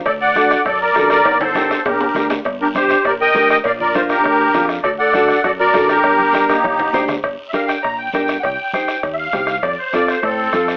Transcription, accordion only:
X:1
M:4/4
L:1/8
Q:1/4=201
K:Gm
V:1 name="Accordion"
[Ad] [d^f]3 [Ad] [Bd]2 [Bd]- | [Bd] [Ac]3 [GB]3 z | z [GB] [Gc]2 [Bd] [eg]2 [eg] | [df] [Bd] [Fc] [GB]4 z |
[Ad] [d^f]3 [Ad] [Bd]2 [GB]- | [GB]3 [EG]4 z | z2 [=ef] g b g3 | [^fg]4 z [=e=f]3 |
d c d c [CA]4 |]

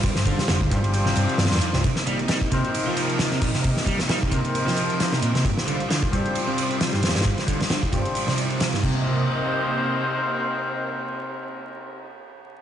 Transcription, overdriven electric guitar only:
X:1
M:4/4
L:1/16
Q:"Swing 16ths" 1/4=133
K:Cm
V:1 name="Overdriven electric guitar" clef=bass
G,, z D, z D, z G,, z2 C,4 G,, F,, G,, | C, z G, z G, z C, z2 F,4 C, B,, C, | C, z G, z G, z C, z2 F,4 C, B,, C, | G,, z D, z D, z G,, z2 C,4 G,, F,, G,, |
G,, z D, z D, z G,, z2 C,4 G,, C,2- | C,2 z12 z2 | z16 |]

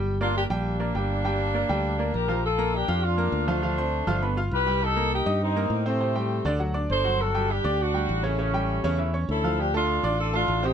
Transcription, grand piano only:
X:1
M:4/4
L:1/8
Q:1/4=202
K:Gm
V:1 name="Grand piano"
[G,Gg] [B,Bd]2 [G,Gg]2 [B,Bd] [G,Gg]2 | [G,Gg]2 [B,Bd] [G,Gg]2 [B,Bd]2 [F,Ff] | z [B,Bb]2 [Fff']2 [B,Bb]2 [F,Ff] | [F,Ff] [Ccc']2 [F,Ff] [=B,=B=b] [Fff']2 [G,Gg]- |
[G,Gg] [B,Bb]2 [Eee']2 [B,Bb]2 [C,Cc] | [C,Cc] [G,Gg]2 [D,Dd] [^F,^F^f] [Ddd']2 [F,Ff]- | [^F,^F^f] [G,Gg]2 [Ddd']2 [G,Gg]2 [^C,^C^c] | [^C,^C^c] [G,Gg]2 [C,Cc] [=E,=E=e] [Cc^c']2 [F,Ff]- |
[F,Ff] [A,Aa]2 [Ddd']2 [A,Aa]2 [C,Cc] |]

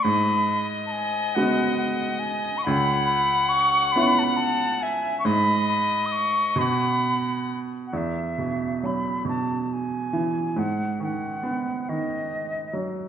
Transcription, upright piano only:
X:1
M:6/8
L:1/8
Q:3/8=46
K:E
V:1 name="Upright piano" clef=bass
G,,3 [G,B,F]3 | C,,3 [B,CE]3 | G,,3 B,,3 | E,, B,, F, B,,2 E, |
G,, D, B, D,2 F, |]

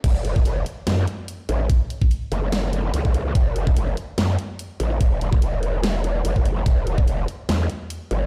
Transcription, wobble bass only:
X:1
M:4/4
L:1/8
Q:"Swing 16ths" 1/4=145
K:F#phr
V:1 name="Wobble bass" clef=bass
F,,,2 F,,, z F,, z2 A,,, | z3 F,,,3 C,,2 | F,,,2 F,,, z F,, z2 A,,, | E,,,2 E,,,4 F,,,2 |
E,,,2 E,,, z E,, z2 G,,, |]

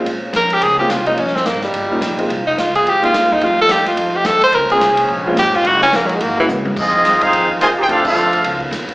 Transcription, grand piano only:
X:1
M:4/4
L:1/8
Q:"Swing" 1/4=215
K:Fm
V:1 name="Grand piano"
z4 z [A,B,CDF] z [G,B,DEF] | z4 z [G,B,DEF] z [A,B,CEF] | z4 z [A,B,CEF]3 | [G,=A,CEF]3 z4 z |
z [A,B,CDF] z3 [A,B,CDF] z2 | z4 z [A,B,D_F_G]3 | z8 | z8 |]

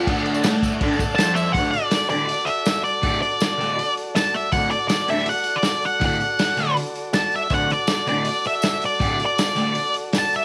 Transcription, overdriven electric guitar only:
X:1
M:4/4
L:1/8
Q:1/4=161
K:D
V:1 name="Overdriven electric guitar" clef=bass
[D,,D,]2 [A,,A,]2 [D,,D,] z [=F,,=F,]2 | [D,,A,,D,] z2 [D,,A,,D,] z4 | [D,,A,,D,] z2 [D,,A,,D,] z4 | [D,,A,,D,] z2 [D,,A,,D,] z4 |
[D,,A,,D,] z2 [D,,A,,D,] z4 | [D,,A,,D,] z2 [D,,A,,D,] z4 | [D,,A,,D,] z2 [D,,A,,D,] z4 |]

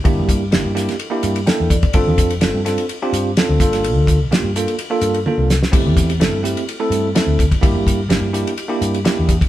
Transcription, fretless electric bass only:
X:1
M:4/4
L:1/16
Q:1/4=127
K:Gdor
V:1 name="Fretless electric bass" clef=bass
G,,, G,,3 G,,, G,,2 z3 G,,2 z E,,2 z | G,,, F,,3 G,,, G,,2 z3 G,,2 z D,, G,,,2- | G,,, D,,3 G,,, G,,2 z3 G,,2 z C,,2 z | G,,, E,,3 G,,, G,,2 z3 G,,2 z D,,2 z |
G,,, G,,3 G,,, G,,2 z3 G,,2 z E,,2 z |]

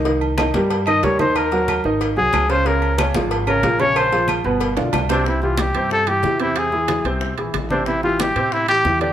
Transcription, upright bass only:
X:1
M:4/4
L:1/8
Q:1/4=184
K:Cphr
V:1 name="Upright bass" clef=bass
C,,3 G,,3 E,,2- | E,,3 A,,,2 C,, D,,2- | D,,3 A,,,3 B,,,2- | B,,,3 G,,,2 =B,,, C,,2- |
[K:C] C,,3 G,,3 E,,2- | E,,3 ^B,,,2 _B,,, A,,,2- | A,,,3 A,,3 E,,2 |]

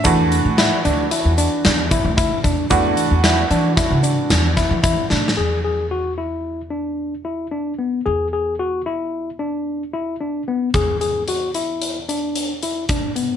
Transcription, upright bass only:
X:1
M:5/4
L:1/16
Q:1/4=112
K:Emix
V:1 name="Upright bass" clef=bass
E,,3 A,,2 z D,,2 z E,,2 z E,,3 D,,2 z E,,2 | E,,2 z E,,3 E,2 z C,2 z E,,3 E,2 z A,,2 | E,,16- E,,4 | E,,16- E,,4 |
E,,16- E,,4 |]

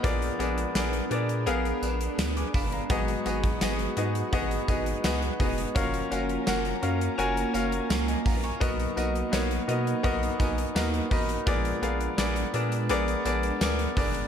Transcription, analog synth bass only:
X:1
M:4/4
L:1/8
Q:1/4=84
K:A#phr
V:1 name="Analog synth bass" clef=bass
A,,, A,,, A,,, A,, A,,, A,,, =D,, =G,,, | G,,, G,,, G,,, G,, G,,, G,,, C,, E,,, | F,,, F,,, F,,, F,, F,,, F,,, C,, A,,, | B,,, B,,, B,,, B,, B,,, B,,, D,, =A,,, |
A,,, A,,, A,,, A,, A,,, A,,, =D,, =G,,, |]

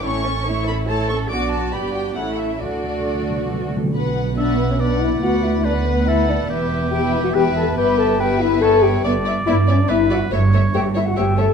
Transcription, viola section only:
X:1
M:3/4
L:1/8
Q:1/4=141
K:D
V:1 name="Viola section"
[A,E] C [A,E] C [A,E] C | [B,D]2 [B,D]2 [A,C]2 | [A,D]4- [A,D] z | [K:Bm] B,2 B,2 B,2 |
B,2 B,4 | B,2 B,2 B,2 | B,2 B,4 | [K:Edor] B, B, B, B, B, B, |
A, A, A, A, A, A, |]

